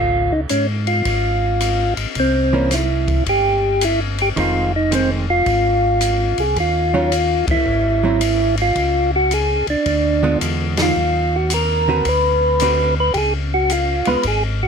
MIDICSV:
0, 0, Header, 1, 5, 480
1, 0, Start_track
1, 0, Tempo, 549451
1, 1892, Time_signature, 4, 2, 24, 8
1, 12821, End_track
2, 0, Start_track
2, 0, Title_t, "Tonewheel organ"
2, 0, Program_c, 0, 16
2, 0, Note_on_c, 0, 65, 81
2, 282, Note_on_c, 0, 63, 72
2, 291, Note_off_c, 0, 65, 0
2, 356, Note_off_c, 0, 63, 0
2, 438, Note_on_c, 0, 61, 73
2, 584, Note_off_c, 0, 61, 0
2, 763, Note_on_c, 0, 65, 76
2, 1693, Note_off_c, 0, 65, 0
2, 1917, Note_on_c, 0, 60, 70
2, 2391, Note_on_c, 0, 64, 67
2, 2400, Note_off_c, 0, 60, 0
2, 2830, Note_off_c, 0, 64, 0
2, 2876, Note_on_c, 0, 67, 79
2, 3358, Note_on_c, 0, 64, 78
2, 3360, Note_off_c, 0, 67, 0
2, 3497, Note_off_c, 0, 64, 0
2, 3684, Note_on_c, 0, 67, 82
2, 3750, Note_off_c, 0, 67, 0
2, 3840, Note_on_c, 0, 65, 80
2, 4126, Note_off_c, 0, 65, 0
2, 4158, Note_on_c, 0, 63, 76
2, 4312, Note_off_c, 0, 63, 0
2, 4324, Note_on_c, 0, 60, 67
2, 4461, Note_off_c, 0, 60, 0
2, 4632, Note_on_c, 0, 65, 106
2, 5591, Note_on_c, 0, 68, 86
2, 5613, Note_off_c, 0, 65, 0
2, 5749, Note_off_c, 0, 68, 0
2, 5766, Note_on_c, 0, 65, 83
2, 6517, Note_off_c, 0, 65, 0
2, 6562, Note_on_c, 0, 64, 99
2, 7475, Note_off_c, 0, 64, 0
2, 7528, Note_on_c, 0, 65, 87
2, 7960, Note_off_c, 0, 65, 0
2, 8001, Note_on_c, 0, 66, 81
2, 8154, Note_off_c, 0, 66, 0
2, 8156, Note_on_c, 0, 68, 80
2, 8445, Note_off_c, 0, 68, 0
2, 8474, Note_on_c, 0, 62, 82
2, 9071, Note_off_c, 0, 62, 0
2, 9454, Note_on_c, 0, 65, 79
2, 9923, Note_on_c, 0, 66, 84
2, 9928, Note_off_c, 0, 65, 0
2, 10074, Note_off_c, 0, 66, 0
2, 10081, Note_on_c, 0, 70, 80
2, 10557, Note_on_c, 0, 71, 87
2, 10562, Note_off_c, 0, 70, 0
2, 11309, Note_off_c, 0, 71, 0
2, 11357, Note_on_c, 0, 71, 85
2, 11469, Note_off_c, 0, 71, 0
2, 11476, Note_on_c, 0, 67, 66
2, 11505, Note_off_c, 0, 67, 0
2, 11510, Note_on_c, 0, 68, 93
2, 11650, Note_off_c, 0, 68, 0
2, 11828, Note_on_c, 0, 66, 81
2, 11985, Note_off_c, 0, 66, 0
2, 11991, Note_on_c, 0, 65, 76
2, 12297, Note_on_c, 0, 71, 82
2, 12310, Note_off_c, 0, 65, 0
2, 12459, Note_off_c, 0, 71, 0
2, 12469, Note_on_c, 0, 68, 76
2, 12609, Note_off_c, 0, 68, 0
2, 12778, Note_on_c, 0, 66, 70
2, 12821, Note_off_c, 0, 66, 0
2, 12821, End_track
3, 0, Start_track
3, 0, Title_t, "Hollow-body jazz guitar"
3, 0, Program_c, 1, 26
3, 2210, Note_on_c, 1, 52, 57
3, 2216, Note_on_c, 1, 58, 59
3, 2220, Note_on_c, 1, 61, 54
3, 2356, Note_off_c, 1, 52, 0
3, 2359, Note_off_c, 1, 58, 0
3, 2361, Note_off_c, 1, 61, 0
3, 3812, Note_on_c, 1, 51, 53
3, 3821, Note_on_c, 1, 56, 61
3, 3825, Note_on_c, 1, 60, 62
3, 4102, Note_off_c, 1, 51, 0
3, 4106, Note_off_c, 1, 56, 0
3, 4108, Note_off_c, 1, 60, 0
3, 4292, Note_on_c, 1, 51, 52
3, 4300, Note_on_c, 1, 56, 49
3, 4302, Note_on_c, 1, 60, 50
3, 4582, Note_off_c, 1, 51, 0
3, 4586, Note_off_c, 1, 56, 0
3, 4587, Note_off_c, 1, 60, 0
3, 6061, Note_on_c, 1, 51, 45
3, 6063, Note_on_c, 1, 54, 50
3, 6064, Note_on_c, 1, 61, 56
3, 6067, Note_on_c, 1, 65, 54
3, 6204, Note_off_c, 1, 51, 0
3, 6204, Note_off_c, 1, 54, 0
3, 6205, Note_off_c, 1, 61, 0
3, 6207, Note_off_c, 1, 65, 0
3, 7019, Note_on_c, 1, 54, 51
3, 7029, Note_on_c, 1, 60, 44
3, 7029, Note_on_c, 1, 64, 53
3, 7163, Note_off_c, 1, 54, 0
3, 7168, Note_off_c, 1, 60, 0
3, 7168, Note_off_c, 1, 64, 0
3, 8936, Note_on_c, 1, 50, 54
3, 8941, Note_on_c, 1, 56, 55
3, 8945, Note_on_c, 1, 59, 62
3, 8948, Note_on_c, 1, 65, 60
3, 9544, Note_off_c, 1, 50, 0
3, 9547, Note_off_c, 1, 56, 0
3, 9549, Note_off_c, 1, 59, 0
3, 9550, Note_off_c, 1, 65, 0
3, 10378, Note_on_c, 1, 50, 48
3, 10384, Note_on_c, 1, 60, 50
3, 10385, Note_on_c, 1, 66, 50
3, 10391, Note_on_c, 1, 71, 56
3, 10521, Note_off_c, 1, 50, 0
3, 10524, Note_off_c, 1, 60, 0
3, 10525, Note_off_c, 1, 66, 0
3, 10527, Note_off_c, 1, 71, 0
3, 11022, Note_on_c, 1, 50, 47
3, 11028, Note_on_c, 1, 60, 46
3, 11031, Note_on_c, 1, 66, 46
3, 11035, Note_on_c, 1, 71, 55
3, 11305, Note_off_c, 1, 50, 0
3, 11308, Note_off_c, 1, 60, 0
3, 11310, Note_off_c, 1, 66, 0
3, 11312, Note_off_c, 1, 71, 0
3, 12293, Note_on_c, 1, 56, 56
3, 12302, Note_on_c, 1, 59, 56
3, 12302, Note_on_c, 1, 65, 70
3, 12436, Note_off_c, 1, 56, 0
3, 12441, Note_off_c, 1, 59, 0
3, 12441, Note_off_c, 1, 65, 0
3, 12821, End_track
4, 0, Start_track
4, 0, Title_t, "Tonewheel organ"
4, 0, Program_c, 2, 16
4, 0, Note_on_c, 2, 32, 58
4, 0, Note_on_c, 2, 37, 74
4, 281, Note_off_c, 2, 32, 0
4, 408, Note_off_c, 2, 37, 0
4, 445, Note_on_c, 2, 44, 66
4, 894, Note_off_c, 2, 44, 0
4, 921, Note_on_c, 2, 32, 76
4, 1692, Note_off_c, 2, 32, 0
4, 1721, Note_on_c, 2, 32, 33
4, 1804, Note_off_c, 2, 32, 0
4, 1882, Note_on_c, 2, 36, 83
4, 2814, Note_off_c, 2, 36, 0
4, 2850, Note_on_c, 2, 31, 73
4, 3779, Note_off_c, 2, 31, 0
4, 3814, Note_on_c, 2, 29, 83
4, 4741, Note_off_c, 2, 29, 0
4, 4773, Note_on_c, 2, 32, 82
4, 5540, Note_off_c, 2, 32, 0
4, 5574, Note_on_c, 2, 36, 60
4, 5725, Note_off_c, 2, 36, 0
4, 5735, Note_on_c, 2, 39, 79
4, 6501, Note_off_c, 2, 39, 0
4, 6531, Note_on_c, 2, 39, 33
4, 6613, Note_off_c, 2, 39, 0
4, 6690, Note_on_c, 2, 32, 82
4, 7619, Note_off_c, 2, 32, 0
4, 7649, Note_on_c, 2, 37, 87
4, 8417, Note_off_c, 2, 37, 0
4, 8449, Note_on_c, 2, 37, 36
4, 8531, Note_off_c, 2, 37, 0
4, 8611, Note_on_c, 2, 38, 74
4, 9060, Note_off_c, 2, 38, 0
4, 9097, Note_on_c, 2, 40, 68
4, 9543, Note_off_c, 2, 40, 0
4, 9576, Note_on_c, 2, 39, 84
4, 10500, Note_off_c, 2, 39, 0
4, 10531, Note_on_c, 2, 38, 78
4, 11457, Note_off_c, 2, 38, 0
4, 11486, Note_on_c, 2, 37, 81
4, 12253, Note_off_c, 2, 37, 0
4, 12295, Note_on_c, 2, 37, 34
4, 12374, Note_off_c, 2, 37, 0
4, 12442, Note_on_c, 2, 32, 83
4, 12821, Note_off_c, 2, 32, 0
4, 12821, End_track
5, 0, Start_track
5, 0, Title_t, "Drums"
5, 429, Note_on_c, 9, 44, 53
5, 429, Note_on_c, 9, 51, 50
5, 517, Note_off_c, 9, 44, 0
5, 517, Note_off_c, 9, 51, 0
5, 759, Note_on_c, 9, 51, 37
5, 846, Note_off_c, 9, 51, 0
5, 918, Note_on_c, 9, 51, 49
5, 921, Note_on_c, 9, 36, 29
5, 1006, Note_off_c, 9, 51, 0
5, 1008, Note_off_c, 9, 36, 0
5, 1402, Note_on_c, 9, 44, 50
5, 1402, Note_on_c, 9, 51, 55
5, 1489, Note_off_c, 9, 44, 0
5, 1489, Note_off_c, 9, 51, 0
5, 1721, Note_on_c, 9, 51, 44
5, 1808, Note_off_c, 9, 51, 0
5, 1879, Note_on_c, 9, 51, 44
5, 1884, Note_on_c, 9, 36, 28
5, 1966, Note_off_c, 9, 51, 0
5, 1972, Note_off_c, 9, 36, 0
5, 2365, Note_on_c, 9, 44, 57
5, 2365, Note_on_c, 9, 51, 52
5, 2369, Note_on_c, 9, 38, 30
5, 2452, Note_off_c, 9, 44, 0
5, 2452, Note_off_c, 9, 51, 0
5, 2457, Note_off_c, 9, 38, 0
5, 2689, Note_on_c, 9, 36, 43
5, 2690, Note_on_c, 9, 51, 39
5, 2776, Note_off_c, 9, 36, 0
5, 2777, Note_off_c, 9, 51, 0
5, 2851, Note_on_c, 9, 36, 27
5, 2851, Note_on_c, 9, 51, 50
5, 2938, Note_off_c, 9, 36, 0
5, 2938, Note_off_c, 9, 51, 0
5, 3330, Note_on_c, 9, 44, 59
5, 3330, Note_on_c, 9, 51, 63
5, 3418, Note_off_c, 9, 44, 0
5, 3418, Note_off_c, 9, 51, 0
5, 3655, Note_on_c, 9, 51, 42
5, 3743, Note_off_c, 9, 51, 0
5, 3817, Note_on_c, 9, 36, 26
5, 3817, Note_on_c, 9, 51, 43
5, 3904, Note_off_c, 9, 51, 0
5, 3905, Note_off_c, 9, 36, 0
5, 4297, Note_on_c, 9, 44, 46
5, 4297, Note_on_c, 9, 51, 53
5, 4384, Note_off_c, 9, 44, 0
5, 4384, Note_off_c, 9, 51, 0
5, 4771, Note_on_c, 9, 51, 42
5, 4774, Note_on_c, 9, 36, 27
5, 4858, Note_off_c, 9, 51, 0
5, 4861, Note_off_c, 9, 36, 0
5, 5247, Note_on_c, 9, 44, 55
5, 5247, Note_on_c, 9, 51, 55
5, 5335, Note_off_c, 9, 44, 0
5, 5335, Note_off_c, 9, 51, 0
5, 5570, Note_on_c, 9, 51, 41
5, 5658, Note_off_c, 9, 51, 0
5, 5734, Note_on_c, 9, 36, 27
5, 5734, Note_on_c, 9, 51, 41
5, 5821, Note_off_c, 9, 36, 0
5, 5821, Note_off_c, 9, 51, 0
5, 6218, Note_on_c, 9, 44, 41
5, 6218, Note_on_c, 9, 51, 56
5, 6305, Note_off_c, 9, 44, 0
5, 6305, Note_off_c, 9, 51, 0
5, 6531, Note_on_c, 9, 51, 61
5, 6532, Note_on_c, 9, 36, 64
5, 6618, Note_off_c, 9, 51, 0
5, 6619, Note_off_c, 9, 36, 0
5, 7170, Note_on_c, 9, 44, 43
5, 7170, Note_on_c, 9, 51, 60
5, 7257, Note_off_c, 9, 44, 0
5, 7257, Note_off_c, 9, 51, 0
5, 7491, Note_on_c, 9, 51, 43
5, 7578, Note_off_c, 9, 51, 0
5, 7649, Note_on_c, 9, 51, 39
5, 7652, Note_on_c, 9, 36, 23
5, 7736, Note_off_c, 9, 51, 0
5, 7740, Note_off_c, 9, 36, 0
5, 8132, Note_on_c, 9, 44, 45
5, 8132, Note_on_c, 9, 51, 49
5, 8220, Note_off_c, 9, 44, 0
5, 8220, Note_off_c, 9, 51, 0
5, 8449, Note_on_c, 9, 51, 36
5, 8536, Note_off_c, 9, 51, 0
5, 8611, Note_on_c, 9, 51, 46
5, 8614, Note_on_c, 9, 36, 31
5, 8698, Note_off_c, 9, 51, 0
5, 8702, Note_off_c, 9, 36, 0
5, 9095, Note_on_c, 9, 44, 54
5, 9095, Note_on_c, 9, 51, 59
5, 9183, Note_off_c, 9, 44, 0
5, 9183, Note_off_c, 9, 51, 0
5, 9410, Note_on_c, 9, 51, 60
5, 9415, Note_on_c, 9, 38, 76
5, 9498, Note_off_c, 9, 51, 0
5, 9502, Note_off_c, 9, 38, 0
5, 10045, Note_on_c, 9, 44, 57
5, 10045, Note_on_c, 9, 51, 57
5, 10133, Note_off_c, 9, 44, 0
5, 10133, Note_off_c, 9, 51, 0
5, 10526, Note_on_c, 9, 51, 52
5, 10530, Note_on_c, 9, 36, 30
5, 10613, Note_off_c, 9, 51, 0
5, 10618, Note_off_c, 9, 36, 0
5, 11003, Note_on_c, 9, 44, 55
5, 11003, Note_on_c, 9, 51, 65
5, 11091, Note_off_c, 9, 44, 0
5, 11091, Note_off_c, 9, 51, 0
5, 11479, Note_on_c, 9, 51, 46
5, 11486, Note_on_c, 9, 36, 26
5, 11567, Note_off_c, 9, 51, 0
5, 11574, Note_off_c, 9, 36, 0
5, 11964, Note_on_c, 9, 44, 55
5, 11964, Note_on_c, 9, 51, 52
5, 12052, Note_off_c, 9, 44, 0
5, 12052, Note_off_c, 9, 51, 0
5, 12276, Note_on_c, 9, 51, 42
5, 12363, Note_off_c, 9, 51, 0
5, 12433, Note_on_c, 9, 51, 52
5, 12444, Note_on_c, 9, 36, 29
5, 12521, Note_off_c, 9, 51, 0
5, 12531, Note_off_c, 9, 36, 0
5, 12821, End_track
0, 0, End_of_file